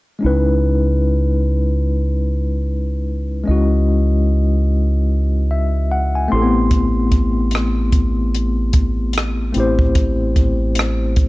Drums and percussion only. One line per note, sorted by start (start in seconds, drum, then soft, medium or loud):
6.71 kick medium
6.71 closed hi-hat medium
7.12 kick medium
7.12 closed hi-hat medium
7.51 cross-stick medium
7.51 closed hi-hat medium
7.92 kick medium
7.92 closed hi-hat medium
8.34 closed hi-hat medium
8.73 kick medium
8.73 closed hi-hat medium
9.13 closed hi-hat medium
9.18 cross-stick medium
9.54 closed hi-hat soft
9.79 kick medium
9.95 kick medium
9.95 closed hi-hat medium
10.36 kick medium
10.36 closed hi-hat medium
10.75 cross-stick medium
10.75 closed hi-hat medium
11.16 kick medium
11.16 closed hi-hat medium